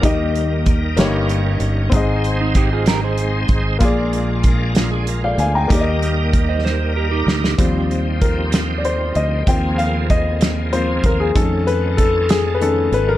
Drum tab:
HH |x-x-x-x-x-x-|x-x-x-x-x-x-|x-x-x-x-x-x-|x-x-x-------|
SD |------o-----|------o-----|------o-----|------o---oo|
BD |o---o-------|o---o-----o-|o---o-------|o---o-------|

HH |x-x-x-x-x-x-|x-x-x-x-x-x-|x-x-x-x-x-x-|
SD |------o-----|------o-----|------o-----|
BD |o---o-------|o---o-----o-|o---o-------|